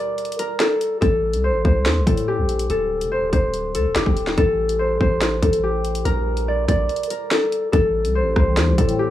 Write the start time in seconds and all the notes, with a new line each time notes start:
Already playing: G4 A#4 C5 D5
0.18 closed hi-hat
0.25 closed hi-hat
0.32 closed hi-hat
0.39 A#4, closed hi-hat
0.60 A4, snare, closed hi-hat
0.81 closed hi-hat
1.01 A1 A4, kick, closed hi-hat
1.33 C2, closed hi-hat
1.44 C5
1.49 A1
1.65 C2 C5, kick
1.86 E2, snare, closed hi-hat
1.96 C2
2.07 A2 A4, kick, closed hi-hat
2.17 closed hi-hat
2.28 G4
2.38 A#1
2.49 closed hi-hat
2.59 closed hi-hat
2.70 D1 A4, closed hi-hat
3.01 F1, closed hi-hat
3.12 C5
3.17 D1
3.33 D1 C5, kick, closed hi-hat
3.54 closed hi-hat
3.75 D2 A4, closed hi-hat
3.85 D1
3.95 F1 G4, snare, closed hi-hat
4.06 D1, kick
4.17 closed hi-hat
4.27 snare
4.38 A1 A4, kick, closed hi-hat
4.69 closed hi-hat
4.79 C5
5.00 A1 C5, kick
5.21 snare, closed hi-hat
5.42 A1 A4, kick, closed hi-hat
5.53 closed hi-hat
5.63 G4
5.85 closed hi-hat
5.95 closed hi-hat
6.05 A#1 A#4, closed hi-hat
6.37 closed hi-hat
6.48 D5
6.68 A#1 D5, kick, closed hi-hat
6.89 closed hi-hat
6.96 closed hi-hat
7.03 closed hi-hat
7.10 A#4, closed hi-hat
7.31 A4, snare, closed hi-hat
7.52 closed hi-hat
7.72 A1 E3 A3 C4 G4 A4, kick, closed hi-hat
8.05 C2, closed hi-hat
8.15 C5
8.20 A1
8.36 C2 C5, kick, cross-stick
8.57 E2, snare, closed hi-hat
8.68 C2
8.78 A2 A4, kick, closed hi-hat
8.89 closed hi-hat
8.99 G4